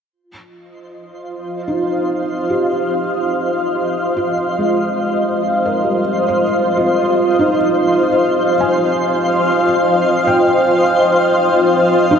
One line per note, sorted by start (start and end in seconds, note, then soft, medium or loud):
0.11 12.19 F4 medium
0.11 12.19 C5 medium
0.11 12.19 C6 medium
0.33 12.19 D#5 medium
0.52 12.19 C5 medium
0.72 12.19 F5 medium
1.68 2.67 D#4 medium
2.50 4.33 G4 medium
4.17 6.41 F4 medium
4.59 6.00 G#3 soft
5.65 6.45 A#4 medium
5.84 8.07 G3 soft
6.28 8.52 C5 medium
6.77 7.56 F4 medium
7.39 9.63 D#4 medium
8.61 10.43 G#5 medium
10.27 12.19 G5 medium
12.11 12.19 D#4 medium